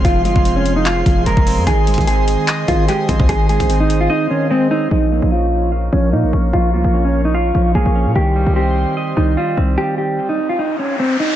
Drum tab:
HH |x-----x-----x-----x-----x-----x-----x-----o-----|x-----x-x-x-x-----x-----x-----x-----x-----x-----|x-----x--x--x-----x-----------------------------|------------------------------------------------|
CP |------------------------x-----------------------|------------------------x-----------------------|------------------------------------------------|------------------------------------------------|
BD |o--------o--------------------o--------o--------|o--------o--------------------o-----------o--o--|o--------o--------------------------------------|------------------------------------------------|

HH |------------------------------------------------|------------------------------------------------|------------------------------------------------|
CP |------------------------------------------------|------------------------------------------------|------------------------------------------------|
BD |------------------------------------------------|------------------------------------------------|------------------------------------------------|